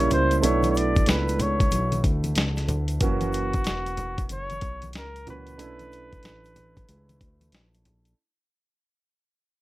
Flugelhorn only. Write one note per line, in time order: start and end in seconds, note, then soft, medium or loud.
0.00 0.13 C#5 medium
0.13 0.40 C5 medium
0.40 0.46 C5 medium
0.44 0.71 C#5 medium
0.71 0.78 C#5 medium
0.77 1.10 D5 medium
1.09 1.43 B4 medium
1.42 2.06 C#5 medium
3.03 4.27 F#4 loud
4.33 4.92 C#5 loud
4.98 5.26 A#4 loud
5.30 7.83 B4 loud